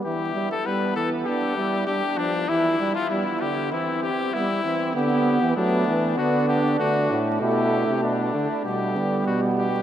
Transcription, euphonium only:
\new Staff \with { instrumentName = "Euphonium" } { \clef bass \time 4/4 \key g \mixolydian \tempo 4 = 98 r1 | r1 | d8. e16 fis8 e8 d4 d8 a,8 | b,8. c16 b,8 d8 b,8 d8 b,4 | }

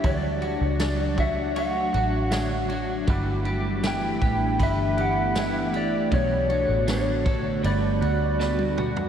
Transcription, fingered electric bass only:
\new Staff \with { instrumentName = "Fingered electric bass" } { \clef bass \time 4/4 \key g \lydian \tempo 4 = 79 d,8. cis,4.~ cis,16 a,,4. | g,,4. a,,8 g,,2 | b,,8. a,,4~ a,,16 g,,8 d,4. | }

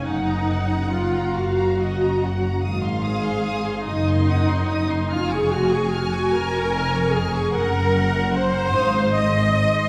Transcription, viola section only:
\new Staff \with { instrumentName = "Viola section" } { \time 6/8 \key des \major \tempo 4. = 49 ees'4 f'8 ges'4. | r8 aes'4 ees'4. | f'16 aes'16 ges'16 aes'16 ges'8 bes'4 aes'8 | bes'4 c''4 ees''4 | }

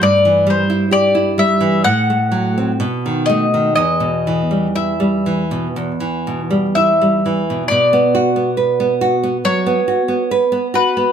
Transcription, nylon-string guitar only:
\new Staff \with { instrumentName = "Nylon-string guitar" } { \clef bass \time 4/4 \key e \minor \tempo 4 = 64 g,16 e16 g16 e'16 g'16 e'16 g16 e16 a,16 a16 fis16 c'16 b,16 dis16 a16 dis16 | e,16 b,16 e16 g16 e'16 g16 e16 b,16 e,16 e16 b,16 g16 e'16 g16 e16 b,16 | \key b \minor b,16 b16 fis'16 b16 b'16 b16 fis'16 b16 fis16 b16 fis'16 b16 b'16 b16 fis'16 b16 | }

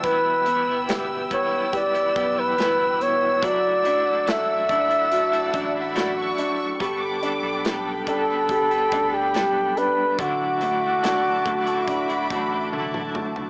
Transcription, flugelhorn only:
\new Staff \with { instrumentName = "Flugelhorn" } { \time 4/4 \key d \major \tempo 4 = 71 b'4 r8 cis''8 d''8. b'8. cis''8 | d''4 e''2 r4 | r4. a'4~ a'16 g'8. b'8 | fis'2. r4 | }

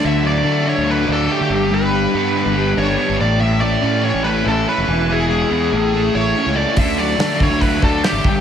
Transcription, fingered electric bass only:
\new Staff \with { instrumentName = "Fingered electric bass" } { \clef bass \time 4/4 \key d \lydian \tempo 4 = 143 d,4 d8. d,8. d,8 r16 d16 g,,8~ | g,,4 g,8. g,,8. g,,8 r16 g,,16 a,,8~ | a,,4 a,8. a,,8. a,,8 r16 f,,16 e,,8~ | e,,4 e,8 a,,4 a,,8 r16 cis,8 r16 |
d,4 d8. d,8. d,8 r16 gis,,16 g,,8 | }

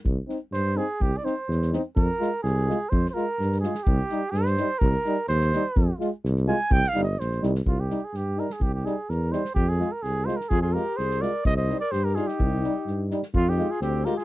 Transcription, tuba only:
\new Staff \with { instrumentName = "Tuba" } { \clef bass \time 2/4 \key c \minor \tempo 4 = 126 c,8 r8 g,4 | c,8 r8 e,4 | f,8 r8 c,4 | f,8 r8 g,4 |
c,8 r8 g,4 | c,8 r8 ees,4 | f,8 r8 c,4 | c,8 g,,8 bes,,8 c,8 |
c,4 g,4 | c,4 e,4 | f,4 c,4 | f,4 c,4 |
c,4 g,4 | c,4 g,4 | f,4 d,4 | }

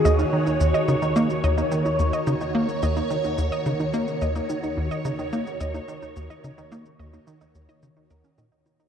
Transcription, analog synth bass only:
\new Staff \with { instrumentName = "Analog synth bass" } { \clef bass \time 4/4 \key ees \minor \tempo 4 = 108 ees,8 r8 ees,16 r16 des8 bes16 r16 ees,8 r8 ees,16 r16 | des8 bes16 r16 ees,8 r8 ees,16 r16 des8 bes16 r16 ees,8 | r8 ees,16 r16 des8 bes16 r16 ees,8 r8 ees,16 r16 des8 | bes16 r16 ees,8 r8 ees,16 r16 des8 ees,16 r16 bes,16 r8. | }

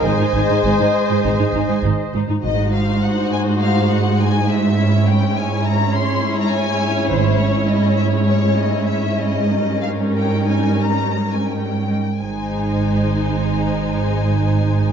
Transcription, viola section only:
\new Staff \with { instrumentName = "Viola section" } { \time 4/4 \key aes \major \tempo 4 = 100 << { c''2.~ c''8 r8 | ees'1 | des'1~ | des'1 |
des'2.~ des'8 r8 | ees'1 | } \\ { ees'16 ees'16 ees'16 ees'16 ees'16 ees'16 r16 ees'16 ees'16 ees'16 ees'16 ees'16 ees'16 r16 ees'16 ees'16 | aes1~ | aes1 | aes1 |
g2.~ g8. r16 | aes1 | } >> }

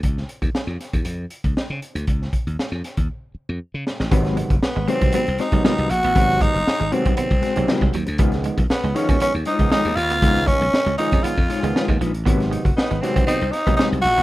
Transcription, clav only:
\new Staff \with { instrumentName = "Clav" } { \clef bass \time 4/4 \key des \major \tempo 4 = 118 r1 | r1 | <c ees ges b>8. r8. <c ees ges b>8. r8 <c ees ges b>8. r8 | <c ees ges b>8. r8. <c ees ges b>8. r8 <c ees ges c'>8. r8 |
<ees f aes ces'>8. r8. <ees f aes ces'>8. r8 <ees f aes ces'>8. r8 | <ees f aes ces'>8. r8. <ees f aes des'>8. r8 <ees f aes ces'>8. r8 | <c ees ges b>8. r8. <c ees ges b>8. r8 <c ees ges b>8. r8 | }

